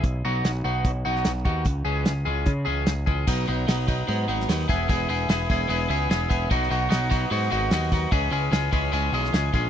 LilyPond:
<<
  \new Staff \with { instrumentName = "Overdriven electric guitar" } { \time 4/4 \key b \major \tempo 4 = 148 r8 <fis b dis' fis'>8 r8 <fis b dis' fis'>8 r8 <fis b dis' fis'>8 r8 <fis b dis' fis'>8 | r8 <e gis cis' gis'>8 r8 <e gis cis' gis'>8 r8 <e gis cis' gis'>8 r8 <e gis cis' gis'>8 | <fis b dis'>8 <fis b dis'>8 <fis b dis'>8 <fis b dis'>8 <fis b dis'>8 <fis b dis'>8 <fis b dis'>8 <e b e' gis'>8 | <e b e' gis'>8 <e b e' gis'>8 <e b e' gis'>8 <e b e' gis'>8 <e b e' gis'>8 <e b e' gis'>8 <e b e' gis'>8 <e b e' gis'>8 |
<fis b dis' fis'>8 <fis b dis' fis'>8 <fis b dis' fis'>8 <fis b dis' fis'>8 <fis b dis' fis'>8 <fis b dis' fis'>8 <fis b dis' fis'>8 <fis b dis' fis'>8 | <e gis cis' gis'>8 <e gis cis' gis'>8 <e gis cis' gis'>8 <e gis cis' gis'>8 <e gis cis' gis'>8 <e gis cis' gis'>8 <e gis cis' gis'>8 <e gis cis' gis'>8 | }
  \new Staff \with { instrumentName = "Picked electric bass" } { \clef bass \time 4/4 \key b \major b,,8 b,,8 b,,8 b,,8 b,,8 b,,8 b,,8 dis,8 | cis,8 cis,8 cis,8 cis,8 cis8 cis,8 cis,8 cis,8 | b,,8 b,,8 b,,4 gis,8 gis,,8 dis,8 e,,8 | e,,8 e,,8 e,,8 e,,8 e,,8 cis,8 e,,8 e,,8 |
b,,8 b,,8 b,,4 gis,8 gis,,8 dis,4 | cis,8 cis,8 cis,8 cis,8 cis,8 b,,8 cis,8 ais,,8 | }
  \new DrumStaff \with { instrumentName = "Drums" } \drummode { \time 4/4 <hh bd>4 <hh sn>4 <hh bd>8. sn16 <hh sn>8 bd8 | <hh bd>4 <hh sn>4 <hh bd>4 <hh sn>8 bd8 | <cymc bd>8 hho8 <hho sn>8 <hho bd>8 hho8 hho16 sn16 <hho sn>16 sn16 <hho bd>8 | <hho bd>8 hho8 <hho sn>8 <hho bd>8 hho8 hho8 <hho sn>8 <hho bd>8 |
<hho bd>16 sn16 hho8 <hho sn>8 <hho bd>8 hho8 hho8 <hho sn>8 <hho bd>8 | <hho bd>8 hho8 <hho sn>8 <hho bd>8 hho8 hho16 sn16 <hho sn>8 <hho bd>8 | }
>>